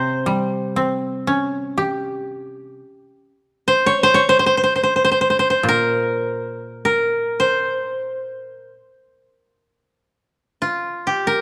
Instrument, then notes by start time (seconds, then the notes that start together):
koto
Already playing: C3 F3 C5
0.26 G3
0.76 C4
1.27 C#4
1.78 G4
3.68 C5
3.86 C#5
4.03 C5
4.14 C#5
4.29 C5
4.39 C5
4.46 C5
4.57 C5
4.64 C5
4.76 C5
4.83 C5
4.96 C5
5.05 C5
5.12 C5
5.21 C5
5.30 C5
5.39 C5
5.50 C5
5.63 A#2
5.69 A#4
6.85 A#4
7.40 C5
10.62 F4
11.07 G4
11.27 A#4